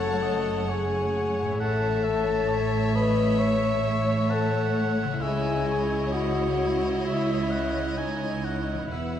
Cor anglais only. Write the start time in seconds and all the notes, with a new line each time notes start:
Already playing: C#5
0.23 D#5
0.70 C#5
1.60 F#5
2.04 E5
2.49 C#5
2.96 D#5
3.40 E5
4.30 F#5
5.22 E5
5.68 C#5
6.13 D#5
7.05 E5
7.50 F#5
7.98 G#5
8.45 F#5
8.93 E5